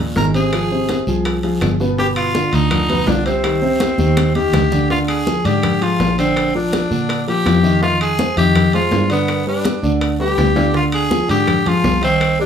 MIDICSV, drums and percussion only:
0, 0, Header, 1, 2, 480
1, 0, Start_track
1, 0, Tempo, 365186
1, 687, Time_signature, 4, 2, 24, 8
1, 16375, End_track
2, 0, Start_track
2, 0, Title_t, "Drums"
2, 208, Note_on_c, 9, 66, 62
2, 210, Note_on_c, 9, 60, 69
2, 210, Note_on_c, 9, 61, 85
2, 213, Note_on_c, 9, 73, 74
2, 218, Note_on_c, 9, 63, 90
2, 339, Note_off_c, 9, 66, 0
2, 341, Note_off_c, 9, 60, 0
2, 341, Note_off_c, 9, 61, 0
2, 344, Note_off_c, 9, 73, 0
2, 350, Note_off_c, 9, 63, 0
2, 452, Note_on_c, 9, 65, 66
2, 454, Note_on_c, 9, 73, 70
2, 456, Note_on_c, 9, 63, 30
2, 583, Note_off_c, 9, 65, 0
2, 585, Note_off_c, 9, 73, 0
2, 588, Note_off_c, 9, 63, 0
2, 692, Note_on_c, 9, 75, 65
2, 693, Note_on_c, 9, 65, 92
2, 693, Note_on_c, 9, 74, 69
2, 694, Note_on_c, 9, 60, 71
2, 700, Note_on_c, 9, 63, 32
2, 823, Note_off_c, 9, 75, 0
2, 824, Note_off_c, 9, 65, 0
2, 825, Note_off_c, 9, 60, 0
2, 825, Note_off_c, 9, 74, 0
2, 831, Note_off_c, 9, 63, 0
2, 935, Note_on_c, 9, 60, 36
2, 937, Note_on_c, 9, 63, 36
2, 1067, Note_off_c, 9, 60, 0
2, 1069, Note_off_c, 9, 63, 0
2, 1165, Note_on_c, 9, 65, 76
2, 1172, Note_on_c, 9, 60, 61
2, 1172, Note_on_c, 9, 73, 72
2, 1173, Note_on_c, 9, 63, 86
2, 1297, Note_off_c, 9, 65, 0
2, 1304, Note_off_c, 9, 60, 0
2, 1304, Note_off_c, 9, 63, 0
2, 1304, Note_off_c, 9, 73, 0
2, 1408, Note_on_c, 9, 73, 69
2, 1416, Note_on_c, 9, 63, 33
2, 1417, Note_on_c, 9, 60, 34
2, 1540, Note_off_c, 9, 73, 0
2, 1548, Note_off_c, 9, 60, 0
2, 1548, Note_off_c, 9, 63, 0
2, 1646, Note_on_c, 9, 65, 97
2, 1649, Note_on_c, 9, 74, 71
2, 1649, Note_on_c, 9, 75, 65
2, 1652, Note_on_c, 9, 63, 34
2, 1656, Note_on_c, 9, 60, 68
2, 1778, Note_off_c, 9, 65, 0
2, 1780, Note_off_c, 9, 75, 0
2, 1781, Note_off_c, 9, 74, 0
2, 1783, Note_off_c, 9, 63, 0
2, 1787, Note_off_c, 9, 60, 0
2, 1884, Note_on_c, 9, 65, 59
2, 1888, Note_on_c, 9, 63, 33
2, 2015, Note_off_c, 9, 65, 0
2, 2019, Note_off_c, 9, 63, 0
2, 2119, Note_on_c, 9, 65, 83
2, 2119, Note_on_c, 9, 66, 64
2, 2126, Note_on_c, 9, 73, 73
2, 2126, Note_on_c, 9, 75, 63
2, 2128, Note_on_c, 9, 60, 74
2, 2128, Note_on_c, 9, 61, 85
2, 2128, Note_on_c, 9, 63, 88
2, 2251, Note_off_c, 9, 65, 0
2, 2251, Note_off_c, 9, 66, 0
2, 2257, Note_off_c, 9, 73, 0
2, 2258, Note_off_c, 9, 75, 0
2, 2259, Note_off_c, 9, 60, 0
2, 2259, Note_off_c, 9, 61, 0
2, 2259, Note_off_c, 9, 63, 0
2, 2364, Note_on_c, 9, 73, 70
2, 2367, Note_on_c, 9, 60, 34
2, 2496, Note_off_c, 9, 73, 0
2, 2499, Note_off_c, 9, 60, 0
2, 2606, Note_on_c, 9, 63, 36
2, 2608, Note_on_c, 9, 74, 77
2, 2609, Note_on_c, 9, 60, 69
2, 2738, Note_off_c, 9, 63, 0
2, 2739, Note_off_c, 9, 74, 0
2, 2740, Note_off_c, 9, 60, 0
2, 2841, Note_on_c, 9, 65, 91
2, 2844, Note_on_c, 9, 75, 71
2, 2851, Note_on_c, 9, 63, 32
2, 2972, Note_off_c, 9, 65, 0
2, 2976, Note_off_c, 9, 75, 0
2, 2982, Note_off_c, 9, 63, 0
2, 3085, Note_on_c, 9, 63, 85
2, 3086, Note_on_c, 9, 73, 73
2, 3088, Note_on_c, 9, 60, 56
2, 3217, Note_off_c, 9, 63, 0
2, 3218, Note_off_c, 9, 73, 0
2, 3219, Note_off_c, 9, 60, 0
2, 3321, Note_on_c, 9, 65, 74
2, 3327, Note_on_c, 9, 73, 73
2, 3452, Note_off_c, 9, 65, 0
2, 3458, Note_off_c, 9, 73, 0
2, 3561, Note_on_c, 9, 60, 72
2, 3561, Note_on_c, 9, 65, 103
2, 3562, Note_on_c, 9, 74, 73
2, 3563, Note_on_c, 9, 75, 64
2, 3568, Note_on_c, 9, 63, 32
2, 3568, Note_on_c, 9, 64, 77
2, 3692, Note_off_c, 9, 60, 0
2, 3692, Note_off_c, 9, 65, 0
2, 3694, Note_off_c, 9, 74, 0
2, 3694, Note_off_c, 9, 75, 0
2, 3699, Note_off_c, 9, 63, 0
2, 3699, Note_off_c, 9, 64, 0
2, 3803, Note_on_c, 9, 63, 35
2, 3803, Note_on_c, 9, 64, 76
2, 3807, Note_on_c, 9, 65, 65
2, 3935, Note_off_c, 9, 63, 0
2, 3935, Note_off_c, 9, 64, 0
2, 3939, Note_off_c, 9, 65, 0
2, 4035, Note_on_c, 9, 60, 68
2, 4035, Note_on_c, 9, 61, 84
2, 4042, Note_on_c, 9, 66, 69
2, 4042, Note_on_c, 9, 73, 75
2, 4043, Note_on_c, 9, 63, 81
2, 4167, Note_off_c, 9, 60, 0
2, 4167, Note_off_c, 9, 61, 0
2, 4173, Note_off_c, 9, 66, 0
2, 4174, Note_off_c, 9, 63, 0
2, 4174, Note_off_c, 9, 73, 0
2, 4281, Note_on_c, 9, 63, 33
2, 4282, Note_on_c, 9, 65, 67
2, 4285, Note_on_c, 9, 73, 66
2, 4412, Note_off_c, 9, 63, 0
2, 4413, Note_off_c, 9, 65, 0
2, 4417, Note_off_c, 9, 73, 0
2, 4519, Note_on_c, 9, 60, 73
2, 4521, Note_on_c, 9, 65, 98
2, 4522, Note_on_c, 9, 63, 35
2, 4523, Note_on_c, 9, 74, 77
2, 4523, Note_on_c, 9, 75, 69
2, 4651, Note_off_c, 9, 60, 0
2, 4653, Note_off_c, 9, 63, 0
2, 4653, Note_off_c, 9, 65, 0
2, 4654, Note_off_c, 9, 74, 0
2, 4655, Note_off_c, 9, 75, 0
2, 4759, Note_on_c, 9, 60, 35
2, 4761, Note_on_c, 9, 63, 35
2, 4890, Note_off_c, 9, 60, 0
2, 4893, Note_off_c, 9, 63, 0
2, 4997, Note_on_c, 9, 63, 95
2, 5004, Note_on_c, 9, 60, 60
2, 5004, Note_on_c, 9, 73, 76
2, 5006, Note_on_c, 9, 65, 78
2, 5129, Note_off_c, 9, 63, 0
2, 5135, Note_off_c, 9, 60, 0
2, 5135, Note_off_c, 9, 73, 0
2, 5137, Note_off_c, 9, 65, 0
2, 5237, Note_on_c, 9, 63, 85
2, 5243, Note_on_c, 9, 73, 69
2, 5249, Note_on_c, 9, 60, 33
2, 5369, Note_off_c, 9, 63, 0
2, 5374, Note_off_c, 9, 73, 0
2, 5381, Note_off_c, 9, 60, 0
2, 5476, Note_on_c, 9, 75, 61
2, 5481, Note_on_c, 9, 65, 94
2, 5481, Note_on_c, 9, 74, 67
2, 5482, Note_on_c, 9, 63, 89
2, 5487, Note_on_c, 9, 60, 62
2, 5608, Note_off_c, 9, 75, 0
2, 5612, Note_off_c, 9, 65, 0
2, 5613, Note_off_c, 9, 63, 0
2, 5613, Note_off_c, 9, 74, 0
2, 5619, Note_off_c, 9, 60, 0
2, 5720, Note_on_c, 9, 65, 60
2, 5723, Note_on_c, 9, 63, 82
2, 5852, Note_off_c, 9, 65, 0
2, 5854, Note_off_c, 9, 63, 0
2, 5958, Note_on_c, 9, 73, 72
2, 5958, Note_on_c, 9, 75, 60
2, 5960, Note_on_c, 9, 65, 84
2, 5961, Note_on_c, 9, 60, 75
2, 5961, Note_on_c, 9, 61, 87
2, 5964, Note_on_c, 9, 64, 94
2, 6089, Note_off_c, 9, 73, 0
2, 6090, Note_off_c, 9, 75, 0
2, 6091, Note_off_c, 9, 65, 0
2, 6092, Note_off_c, 9, 60, 0
2, 6092, Note_off_c, 9, 61, 0
2, 6095, Note_off_c, 9, 64, 0
2, 6194, Note_on_c, 9, 73, 70
2, 6204, Note_on_c, 9, 64, 74
2, 6206, Note_on_c, 9, 60, 34
2, 6326, Note_off_c, 9, 73, 0
2, 6335, Note_off_c, 9, 64, 0
2, 6338, Note_off_c, 9, 60, 0
2, 6441, Note_on_c, 9, 74, 75
2, 6445, Note_on_c, 9, 60, 68
2, 6446, Note_on_c, 9, 63, 33
2, 6573, Note_off_c, 9, 74, 0
2, 6577, Note_off_c, 9, 60, 0
2, 6578, Note_off_c, 9, 63, 0
2, 6676, Note_on_c, 9, 75, 66
2, 6682, Note_on_c, 9, 63, 34
2, 6682, Note_on_c, 9, 65, 95
2, 6807, Note_off_c, 9, 75, 0
2, 6814, Note_off_c, 9, 63, 0
2, 6814, Note_off_c, 9, 65, 0
2, 6920, Note_on_c, 9, 73, 70
2, 6924, Note_on_c, 9, 63, 84
2, 6931, Note_on_c, 9, 60, 59
2, 7051, Note_off_c, 9, 73, 0
2, 7056, Note_off_c, 9, 63, 0
2, 7062, Note_off_c, 9, 60, 0
2, 7156, Note_on_c, 9, 73, 70
2, 7167, Note_on_c, 9, 65, 72
2, 7288, Note_off_c, 9, 73, 0
2, 7298, Note_off_c, 9, 65, 0
2, 7397, Note_on_c, 9, 75, 72
2, 7403, Note_on_c, 9, 74, 67
2, 7405, Note_on_c, 9, 63, 35
2, 7405, Note_on_c, 9, 64, 75
2, 7405, Note_on_c, 9, 65, 98
2, 7408, Note_on_c, 9, 60, 71
2, 7529, Note_off_c, 9, 75, 0
2, 7534, Note_off_c, 9, 74, 0
2, 7536, Note_off_c, 9, 63, 0
2, 7536, Note_off_c, 9, 64, 0
2, 7536, Note_off_c, 9, 65, 0
2, 7540, Note_off_c, 9, 60, 0
2, 7647, Note_on_c, 9, 63, 34
2, 7648, Note_on_c, 9, 65, 64
2, 7778, Note_off_c, 9, 63, 0
2, 7780, Note_off_c, 9, 65, 0
2, 7886, Note_on_c, 9, 63, 80
2, 7887, Note_on_c, 9, 60, 73
2, 7887, Note_on_c, 9, 61, 83
2, 7887, Note_on_c, 9, 73, 67
2, 7889, Note_on_c, 9, 66, 61
2, 8018, Note_off_c, 9, 60, 0
2, 8018, Note_off_c, 9, 61, 0
2, 8018, Note_off_c, 9, 63, 0
2, 8018, Note_off_c, 9, 73, 0
2, 8021, Note_off_c, 9, 66, 0
2, 8124, Note_on_c, 9, 73, 71
2, 8128, Note_on_c, 9, 63, 33
2, 8133, Note_on_c, 9, 65, 69
2, 8255, Note_off_c, 9, 73, 0
2, 8260, Note_off_c, 9, 63, 0
2, 8264, Note_off_c, 9, 65, 0
2, 8361, Note_on_c, 9, 75, 71
2, 8365, Note_on_c, 9, 63, 36
2, 8366, Note_on_c, 9, 60, 68
2, 8369, Note_on_c, 9, 74, 72
2, 8372, Note_on_c, 9, 65, 87
2, 8492, Note_off_c, 9, 75, 0
2, 8496, Note_off_c, 9, 63, 0
2, 8498, Note_off_c, 9, 60, 0
2, 8500, Note_off_c, 9, 74, 0
2, 8504, Note_off_c, 9, 65, 0
2, 8598, Note_on_c, 9, 60, 34
2, 8604, Note_on_c, 9, 63, 35
2, 8730, Note_off_c, 9, 60, 0
2, 8735, Note_off_c, 9, 63, 0
2, 8844, Note_on_c, 9, 60, 62
2, 8844, Note_on_c, 9, 73, 73
2, 8846, Note_on_c, 9, 65, 75
2, 8847, Note_on_c, 9, 63, 89
2, 8975, Note_off_c, 9, 73, 0
2, 8976, Note_off_c, 9, 60, 0
2, 8978, Note_off_c, 9, 65, 0
2, 8979, Note_off_c, 9, 63, 0
2, 9084, Note_on_c, 9, 60, 32
2, 9085, Note_on_c, 9, 63, 31
2, 9087, Note_on_c, 9, 73, 70
2, 9215, Note_off_c, 9, 60, 0
2, 9216, Note_off_c, 9, 63, 0
2, 9219, Note_off_c, 9, 73, 0
2, 9322, Note_on_c, 9, 60, 69
2, 9324, Note_on_c, 9, 75, 69
2, 9325, Note_on_c, 9, 74, 66
2, 9326, Note_on_c, 9, 63, 34
2, 9331, Note_on_c, 9, 65, 94
2, 9454, Note_off_c, 9, 60, 0
2, 9455, Note_off_c, 9, 75, 0
2, 9457, Note_off_c, 9, 63, 0
2, 9457, Note_off_c, 9, 74, 0
2, 9462, Note_off_c, 9, 65, 0
2, 9567, Note_on_c, 9, 63, 36
2, 9573, Note_on_c, 9, 65, 61
2, 9698, Note_off_c, 9, 63, 0
2, 9704, Note_off_c, 9, 65, 0
2, 9800, Note_on_c, 9, 63, 83
2, 9804, Note_on_c, 9, 75, 61
2, 9807, Note_on_c, 9, 60, 65
2, 9807, Note_on_c, 9, 61, 79
2, 9807, Note_on_c, 9, 73, 70
2, 9812, Note_on_c, 9, 65, 79
2, 9812, Note_on_c, 9, 66, 62
2, 9931, Note_off_c, 9, 63, 0
2, 9936, Note_off_c, 9, 75, 0
2, 9938, Note_off_c, 9, 60, 0
2, 9938, Note_off_c, 9, 61, 0
2, 9939, Note_off_c, 9, 73, 0
2, 9944, Note_off_c, 9, 65, 0
2, 9944, Note_off_c, 9, 66, 0
2, 10041, Note_on_c, 9, 63, 71
2, 10044, Note_on_c, 9, 73, 67
2, 10047, Note_on_c, 9, 60, 34
2, 10172, Note_off_c, 9, 63, 0
2, 10176, Note_off_c, 9, 73, 0
2, 10178, Note_off_c, 9, 60, 0
2, 10284, Note_on_c, 9, 63, 34
2, 10285, Note_on_c, 9, 74, 74
2, 10288, Note_on_c, 9, 60, 75
2, 10416, Note_off_c, 9, 63, 0
2, 10416, Note_off_c, 9, 74, 0
2, 10419, Note_off_c, 9, 60, 0
2, 10522, Note_on_c, 9, 75, 66
2, 10526, Note_on_c, 9, 63, 36
2, 10528, Note_on_c, 9, 65, 91
2, 10653, Note_off_c, 9, 75, 0
2, 10657, Note_off_c, 9, 63, 0
2, 10659, Note_off_c, 9, 65, 0
2, 10762, Note_on_c, 9, 63, 98
2, 10767, Note_on_c, 9, 73, 73
2, 10771, Note_on_c, 9, 60, 66
2, 10894, Note_off_c, 9, 63, 0
2, 10898, Note_off_c, 9, 73, 0
2, 10902, Note_off_c, 9, 60, 0
2, 11004, Note_on_c, 9, 65, 75
2, 11005, Note_on_c, 9, 73, 71
2, 11135, Note_off_c, 9, 65, 0
2, 11137, Note_off_c, 9, 73, 0
2, 11243, Note_on_c, 9, 75, 68
2, 11245, Note_on_c, 9, 63, 30
2, 11245, Note_on_c, 9, 64, 81
2, 11245, Note_on_c, 9, 65, 95
2, 11247, Note_on_c, 9, 60, 65
2, 11247, Note_on_c, 9, 74, 64
2, 11375, Note_off_c, 9, 75, 0
2, 11376, Note_off_c, 9, 65, 0
2, 11377, Note_off_c, 9, 63, 0
2, 11377, Note_off_c, 9, 64, 0
2, 11378, Note_off_c, 9, 60, 0
2, 11378, Note_off_c, 9, 74, 0
2, 11478, Note_on_c, 9, 65, 63
2, 11482, Note_on_c, 9, 63, 34
2, 11610, Note_off_c, 9, 65, 0
2, 11614, Note_off_c, 9, 63, 0
2, 11716, Note_on_c, 9, 63, 87
2, 11718, Note_on_c, 9, 66, 62
2, 11724, Note_on_c, 9, 73, 68
2, 11725, Note_on_c, 9, 60, 73
2, 11725, Note_on_c, 9, 61, 83
2, 11847, Note_off_c, 9, 63, 0
2, 11850, Note_off_c, 9, 66, 0
2, 11855, Note_off_c, 9, 73, 0
2, 11856, Note_off_c, 9, 60, 0
2, 11856, Note_off_c, 9, 61, 0
2, 11958, Note_on_c, 9, 65, 69
2, 11963, Note_on_c, 9, 73, 68
2, 11965, Note_on_c, 9, 63, 34
2, 12090, Note_off_c, 9, 65, 0
2, 12094, Note_off_c, 9, 73, 0
2, 12096, Note_off_c, 9, 63, 0
2, 12202, Note_on_c, 9, 65, 87
2, 12202, Note_on_c, 9, 75, 69
2, 12208, Note_on_c, 9, 60, 75
2, 12209, Note_on_c, 9, 63, 33
2, 12209, Note_on_c, 9, 74, 79
2, 12333, Note_off_c, 9, 65, 0
2, 12333, Note_off_c, 9, 75, 0
2, 12340, Note_off_c, 9, 60, 0
2, 12340, Note_off_c, 9, 63, 0
2, 12340, Note_off_c, 9, 74, 0
2, 12444, Note_on_c, 9, 60, 35
2, 12446, Note_on_c, 9, 63, 35
2, 12575, Note_off_c, 9, 60, 0
2, 12577, Note_off_c, 9, 63, 0
2, 12679, Note_on_c, 9, 65, 79
2, 12685, Note_on_c, 9, 73, 66
2, 12686, Note_on_c, 9, 60, 66
2, 12688, Note_on_c, 9, 63, 92
2, 12810, Note_off_c, 9, 65, 0
2, 12816, Note_off_c, 9, 73, 0
2, 12817, Note_off_c, 9, 60, 0
2, 12819, Note_off_c, 9, 63, 0
2, 12924, Note_on_c, 9, 63, 33
2, 12925, Note_on_c, 9, 60, 35
2, 12927, Note_on_c, 9, 73, 75
2, 13055, Note_off_c, 9, 63, 0
2, 13057, Note_off_c, 9, 60, 0
2, 13059, Note_off_c, 9, 73, 0
2, 13161, Note_on_c, 9, 60, 67
2, 13161, Note_on_c, 9, 75, 68
2, 13162, Note_on_c, 9, 65, 95
2, 13166, Note_on_c, 9, 63, 30
2, 13168, Note_on_c, 9, 74, 72
2, 13292, Note_off_c, 9, 60, 0
2, 13292, Note_off_c, 9, 75, 0
2, 13294, Note_off_c, 9, 65, 0
2, 13298, Note_off_c, 9, 63, 0
2, 13300, Note_off_c, 9, 74, 0
2, 13407, Note_on_c, 9, 65, 70
2, 13411, Note_on_c, 9, 63, 38
2, 13539, Note_off_c, 9, 65, 0
2, 13542, Note_off_c, 9, 63, 0
2, 13640, Note_on_c, 9, 75, 62
2, 13643, Note_on_c, 9, 60, 68
2, 13643, Note_on_c, 9, 61, 84
2, 13645, Note_on_c, 9, 73, 65
2, 13648, Note_on_c, 9, 66, 60
2, 13649, Note_on_c, 9, 63, 86
2, 13771, Note_off_c, 9, 75, 0
2, 13775, Note_off_c, 9, 60, 0
2, 13775, Note_off_c, 9, 61, 0
2, 13776, Note_off_c, 9, 73, 0
2, 13780, Note_off_c, 9, 66, 0
2, 13781, Note_off_c, 9, 63, 0
2, 13877, Note_on_c, 9, 60, 32
2, 13881, Note_on_c, 9, 66, 91
2, 13884, Note_on_c, 9, 73, 67
2, 13892, Note_on_c, 9, 63, 70
2, 14009, Note_off_c, 9, 60, 0
2, 14013, Note_off_c, 9, 66, 0
2, 14016, Note_off_c, 9, 73, 0
2, 14023, Note_off_c, 9, 63, 0
2, 14121, Note_on_c, 9, 60, 69
2, 14123, Note_on_c, 9, 74, 74
2, 14133, Note_on_c, 9, 63, 32
2, 14253, Note_off_c, 9, 60, 0
2, 14254, Note_off_c, 9, 74, 0
2, 14265, Note_off_c, 9, 63, 0
2, 14358, Note_on_c, 9, 65, 89
2, 14362, Note_on_c, 9, 75, 60
2, 14370, Note_on_c, 9, 63, 34
2, 14489, Note_off_c, 9, 65, 0
2, 14493, Note_off_c, 9, 75, 0
2, 14501, Note_off_c, 9, 63, 0
2, 14600, Note_on_c, 9, 60, 63
2, 14602, Note_on_c, 9, 73, 70
2, 14604, Note_on_c, 9, 63, 93
2, 14732, Note_off_c, 9, 60, 0
2, 14734, Note_off_c, 9, 73, 0
2, 14736, Note_off_c, 9, 63, 0
2, 14843, Note_on_c, 9, 73, 76
2, 14845, Note_on_c, 9, 65, 77
2, 14975, Note_off_c, 9, 73, 0
2, 14977, Note_off_c, 9, 65, 0
2, 15080, Note_on_c, 9, 60, 63
2, 15083, Note_on_c, 9, 63, 35
2, 15083, Note_on_c, 9, 64, 81
2, 15083, Note_on_c, 9, 74, 66
2, 15083, Note_on_c, 9, 75, 71
2, 15089, Note_on_c, 9, 65, 89
2, 15211, Note_off_c, 9, 60, 0
2, 15214, Note_off_c, 9, 63, 0
2, 15214, Note_off_c, 9, 64, 0
2, 15215, Note_off_c, 9, 74, 0
2, 15215, Note_off_c, 9, 75, 0
2, 15220, Note_off_c, 9, 65, 0
2, 15327, Note_on_c, 9, 63, 36
2, 15327, Note_on_c, 9, 64, 75
2, 15331, Note_on_c, 9, 65, 70
2, 15458, Note_off_c, 9, 63, 0
2, 15458, Note_off_c, 9, 64, 0
2, 15462, Note_off_c, 9, 65, 0
2, 15565, Note_on_c, 9, 73, 78
2, 15566, Note_on_c, 9, 63, 89
2, 15567, Note_on_c, 9, 60, 72
2, 15567, Note_on_c, 9, 61, 91
2, 15696, Note_off_c, 9, 73, 0
2, 15697, Note_off_c, 9, 63, 0
2, 15699, Note_off_c, 9, 60, 0
2, 15699, Note_off_c, 9, 61, 0
2, 15807, Note_on_c, 9, 73, 72
2, 15808, Note_on_c, 9, 65, 67
2, 15939, Note_off_c, 9, 73, 0
2, 15940, Note_off_c, 9, 65, 0
2, 16046, Note_on_c, 9, 74, 69
2, 16047, Note_on_c, 9, 60, 68
2, 16050, Note_on_c, 9, 65, 86
2, 16051, Note_on_c, 9, 63, 36
2, 16051, Note_on_c, 9, 75, 75
2, 16177, Note_off_c, 9, 74, 0
2, 16179, Note_off_c, 9, 60, 0
2, 16181, Note_off_c, 9, 65, 0
2, 16182, Note_off_c, 9, 63, 0
2, 16183, Note_off_c, 9, 75, 0
2, 16288, Note_on_c, 9, 60, 37
2, 16289, Note_on_c, 9, 63, 36
2, 16375, Note_off_c, 9, 60, 0
2, 16375, Note_off_c, 9, 63, 0
2, 16375, End_track
0, 0, End_of_file